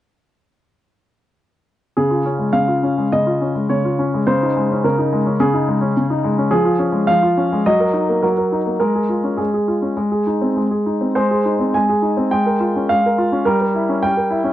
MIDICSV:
0, 0, Header, 1, 2, 480
1, 0, Start_track
1, 0, Key_signature, -5, "major"
1, 0, Tempo, 579151
1, 1627, Time_signature, 4, 2, 24, 8
1, 3541, Tempo, 564440
1, 6901, Tempo, 587084
1, 9308, Key_signature, -4, "major"
1, 9781, Tempo, 567644
1, 12134, End_track
2, 0, Start_track
2, 0, Title_t, "Grand piano"
2, 0, Program_c, 0, 0
2, 1628, Note_on_c, 0, 68, 52
2, 1633, Note_on_c, 0, 49, 39
2, 1745, Note_on_c, 0, 65, 29
2, 1817, Control_c, 0, 64, 127
2, 1866, Note_on_c, 0, 61, 30
2, 1938, Note_off_c, 0, 65, 0
2, 1976, Note_on_c, 0, 56, 31
2, 2059, Note_off_c, 0, 61, 0
2, 2083, Note_off_c, 0, 49, 0
2, 2093, Note_on_c, 0, 77, 55
2, 2096, Note_on_c, 0, 49, 38
2, 2109, Note_off_c, 0, 68, 0
2, 2114, Control_c, 0, 64, 0
2, 2174, Note_off_c, 0, 56, 0
2, 2220, Note_on_c, 0, 65, 32
2, 2346, Note_on_c, 0, 61, 30
2, 2417, Note_off_c, 0, 65, 0
2, 2466, Note_on_c, 0, 56, 31
2, 2540, Note_off_c, 0, 61, 0
2, 2578, Note_off_c, 0, 49, 0
2, 2582, Note_off_c, 0, 77, 0
2, 2588, Note_on_c, 0, 75, 59
2, 2591, Note_on_c, 0, 49, 38
2, 2660, Note_off_c, 0, 56, 0
2, 2706, Note_on_c, 0, 65, 32
2, 2828, Note_on_c, 0, 61, 30
2, 2899, Note_off_c, 0, 65, 0
2, 2943, Note_on_c, 0, 56, 32
2, 3019, Note_off_c, 0, 61, 0
2, 3051, Note_off_c, 0, 49, 0
2, 3061, Note_on_c, 0, 73, 52
2, 3064, Note_on_c, 0, 49, 34
2, 3067, Note_off_c, 0, 75, 0
2, 3136, Note_off_c, 0, 56, 0
2, 3191, Note_on_c, 0, 65, 32
2, 3307, Note_on_c, 0, 61, 35
2, 3379, Note_off_c, 0, 65, 0
2, 3433, Note_on_c, 0, 56, 37
2, 3496, Note_off_c, 0, 61, 0
2, 3526, Note_off_c, 0, 49, 0
2, 3538, Note_on_c, 0, 72, 58
2, 3540, Note_off_c, 0, 73, 0
2, 3540, Note_on_c, 0, 49, 42
2, 3547, Note_off_c, 0, 56, 0
2, 3674, Note_on_c, 0, 63, 32
2, 3710, Control_c, 0, 64, 127
2, 3789, Note_on_c, 0, 56, 33
2, 3862, Note_off_c, 0, 63, 0
2, 3915, Note_on_c, 0, 61, 36
2, 3980, Note_off_c, 0, 56, 0
2, 4013, Note_off_c, 0, 49, 0
2, 4024, Note_off_c, 0, 72, 0
2, 4025, Note_on_c, 0, 49, 41
2, 4026, Note_on_c, 0, 70, 55
2, 4039, Control_c, 0, 64, 0
2, 4103, Note_off_c, 0, 61, 0
2, 4146, Note_on_c, 0, 63, 33
2, 4266, Note_on_c, 0, 56, 39
2, 4338, Note_off_c, 0, 63, 0
2, 4378, Note_on_c, 0, 61, 38
2, 4458, Note_off_c, 0, 56, 0
2, 4487, Note_off_c, 0, 49, 0
2, 4500, Note_on_c, 0, 49, 49
2, 4501, Note_on_c, 0, 68, 60
2, 4505, Note_off_c, 0, 70, 0
2, 4574, Note_off_c, 0, 61, 0
2, 4617, Note_on_c, 0, 63, 39
2, 4738, Note_on_c, 0, 56, 41
2, 4812, Note_off_c, 0, 63, 0
2, 4850, Note_on_c, 0, 61, 42
2, 4931, Note_off_c, 0, 56, 0
2, 4973, Note_off_c, 0, 49, 0
2, 4986, Note_on_c, 0, 49, 43
2, 5046, Note_off_c, 0, 61, 0
2, 5097, Note_on_c, 0, 63, 39
2, 5216, Note_on_c, 0, 56, 42
2, 5217, Note_off_c, 0, 68, 0
2, 5289, Note_off_c, 0, 63, 0
2, 5334, Note_on_c, 0, 61, 41
2, 5408, Note_off_c, 0, 56, 0
2, 5441, Note_on_c, 0, 68, 65
2, 5445, Note_off_c, 0, 49, 0
2, 5445, Note_on_c, 0, 53, 53
2, 5455, Note_off_c, 0, 61, 0
2, 5563, Note_on_c, 0, 65, 38
2, 5628, Control_c, 0, 64, 127
2, 5683, Note_on_c, 0, 61, 40
2, 5761, Note_off_c, 0, 65, 0
2, 5795, Note_on_c, 0, 56, 37
2, 5880, Note_off_c, 0, 61, 0
2, 5913, Note_off_c, 0, 53, 0
2, 5922, Note_on_c, 0, 77, 67
2, 5926, Note_on_c, 0, 53, 46
2, 5927, Note_off_c, 0, 68, 0
2, 5945, Control_c, 0, 64, 0
2, 5996, Note_off_c, 0, 56, 0
2, 6055, Note_on_c, 0, 65, 38
2, 6178, Note_on_c, 0, 61, 40
2, 6248, Note_off_c, 0, 65, 0
2, 6307, Note_on_c, 0, 56, 38
2, 6370, Note_off_c, 0, 61, 0
2, 6399, Note_off_c, 0, 53, 0
2, 6411, Note_off_c, 0, 77, 0
2, 6423, Note_off_c, 0, 56, 0
2, 6423, Note_on_c, 0, 75, 71
2, 6424, Note_on_c, 0, 54, 50
2, 6541, Note_on_c, 0, 70, 40
2, 6584, Control_c, 0, 64, 127
2, 6656, Note_on_c, 0, 63, 35
2, 6735, Note_off_c, 0, 70, 0
2, 6786, Note_on_c, 0, 58, 34
2, 6853, Note_off_c, 0, 63, 0
2, 6894, Note_off_c, 0, 54, 0
2, 6901, Note_on_c, 0, 70, 47
2, 6907, Note_off_c, 0, 75, 0
2, 6907, Note_on_c, 0, 54, 37
2, 6916, Control_c, 0, 64, 0
2, 6976, Note_off_c, 0, 58, 0
2, 7011, Note_off_c, 0, 70, 0
2, 7023, Note_on_c, 0, 70, 35
2, 7144, Note_on_c, 0, 63, 34
2, 7213, Note_off_c, 0, 70, 0
2, 7259, Note_on_c, 0, 58, 29
2, 7334, Note_off_c, 0, 63, 0
2, 7368, Note_off_c, 0, 54, 0
2, 7370, Note_on_c, 0, 70, 51
2, 7373, Note_on_c, 0, 56, 39
2, 7380, Note_off_c, 0, 58, 0
2, 7499, Note_on_c, 0, 68, 28
2, 7542, Control_c, 0, 64, 127
2, 7614, Note_on_c, 0, 65, 27
2, 7693, Note_off_c, 0, 68, 0
2, 7732, Note_on_c, 0, 61, 30
2, 7809, Note_off_c, 0, 65, 0
2, 7839, Note_off_c, 0, 56, 0
2, 7844, Note_on_c, 0, 68, 39
2, 7852, Note_on_c, 0, 56, 37
2, 7855, Note_off_c, 0, 70, 0
2, 7873, Control_c, 0, 64, 0
2, 7927, Note_off_c, 0, 61, 0
2, 7967, Note_off_c, 0, 68, 0
2, 7979, Note_on_c, 0, 68, 31
2, 8093, Note_on_c, 0, 65, 30
2, 8169, Note_off_c, 0, 68, 0
2, 8208, Note_on_c, 0, 61, 29
2, 8286, Note_off_c, 0, 65, 0
2, 8315, Note_off_c, 0, 56, 0
2, 8327, Note_on_c, 0, 56, 38
2, 8332, Note_off_c, 0, 61, 0
2, 8449, Note_on_c, 0, 68, 31
2, 8529, Control_c, 0, 64, 127
2, 8573, Note_on_c, 0, 63, 29
2, 8647, Note_off_c, 0, 68, 0
2, 8692, Note_on_c, 0, 60, 30
2, 8771, Note_off_c, 0, 63, 0
2, 8803, Note_off_c, 0, 56, 0
2, 8816, Note_on_c, 0, 56, 31
2, 8829, Control_c, 0, 64, 0
2, 8891, Note_off_c, 0, 60, 0
2, 8936, Note_on_c, 0, 68, 27
2, 9060, Note_on_c, 0, 63, 28
2, 9135, Note_off_c, 0, 68, 0
2, 9179, Note_on_c, 0, 60, 27
2, 9257, Note_off_c, 0, 63, 0
2, 9287, Note_off_c, 0, 56, 0
2, 9296, Note_on_c, 0, 72, 55
2, 9299, Note_on_c, 0, 56, 45
2, 9304, Note_off_c, 0, 60, 0
2, 9425, Note_on_c, 0, 68, 31
2, 9493, Control_c, 0, 64, 127
2, 9543, Note_on_c, 0, 63, 35
2, 9617, Note_off_c, 0, 68, 0
2, 9655, Note_on_c, 0, 60, 33
2, 9735, Note_off_c, 0, 63, 0
2, 9767, Note_off_c, 0, 56, 0
2, 9778, Note_off_c, 0, 72, 0
2, 9778, Note_on_c, 0, 80, 58
2, 9779, Note_on_c, 0, 56, 37
2, 9795, Control_c, 0, 64, 0
2, 9852, Note_off_c, 0, 60, 0
2, 9905, Note_on_c, 0, 68, 33
2, 10014, Note_on_c, 0, 63, 33
2, 10100, Note_off_c, 0, 68, 0
2, 10138, Note_on_c, 0, 60, 35
2, 10215, Note_off_c, 0, 63, 0
2, 10251, Note_off_c, 0, 56, 0
2, 10260, Note_on_c, 0, 79, 62
2, 10264, Note_on_c, 0, 56, 46
2, 10265, Note_off_c, 0, 60, 0
2, 10268, Note_off_c, 0, 80, 0
2, 10386, Note_on_c, 0, 70, 34
2, 10450, Control_c, 0, 64, 127
2, 10504, Note_on_c, 0, 65, 34
2, 10583, Note_off_c, 0, 70, 0
2, 10638, Note_on_c, 0, 61, 34
2, 10702, Note_off_c, 0, 65, 0
2, 10743, Note_off_c, 0, 56, 0
2, 10749, Note_off_c, 0, 79, 0
2, 10749, Note_on_c, 0, 77, 60
2, 10756, Note_on_c, 0, 56, 38
2, 10766, Control_c, 0, 64, 0
2, 10829, Note_off_c, 0, 61, 0
2, 10890, Note_on_c, 0, 70, 35
2, 10995, Note_on_c, 0, 65, 37
2, 11074, Note_off_c, 0, 70, 0
2, 11114, Note_on_c, 0, 61, 39
2, 11186, Note_off_c, 0, 65, 0
2, 11220, Note_off_c, 0, 56, 0
2, 11224, Note_on_c, 0, 70, 61
2, 11229, Note_on_c, 0, 55, 52
2, 11231, Note_off_c, 0, 77, 0
2, 11233, Note_off_c, 0, 61, 0
2, 11344, Note_off_c, 0, 70, 0
2, 11357, Note_on_c, 0, 70, 33
2, 11372, Control_c, 0, 64, 127
2, 11472, Note_on_c, 0, 64, 40
2, 11546, Note_off_c, 0, 70, 0
2, 11595, Note_on_c, 0, 61, 38
2, 11663, Note_off_c, 0, 64, 0
2, 11703, Note_off_c, 0, 55, 0
2, 11709, Note_on_c, 0, 79, 66
2, 11716, Note_on_c, 0, 55, 39
2, 11723, Control_c, 0, 64, 0
2, 11784, Note_off_c, 0, 61, 0
2, 11832, Note_on_c, 0, 70, 38
2, 11945, Note_on_c, 0, 64, 41
2, 12020, Note_off_c, 0, 70, 0
2, 12059, Note_on_c, 0, 61, 39
2, 12134, Note_off_c, 0, 55, 0
2, 12134, Note_off_c, 0, 61, 0
2, 12134, Note_off_c, 0, 64, 0
2, 12134, Note_off_c, 0, 79, 0
2, 12134, End_track
0, 0, End_of_file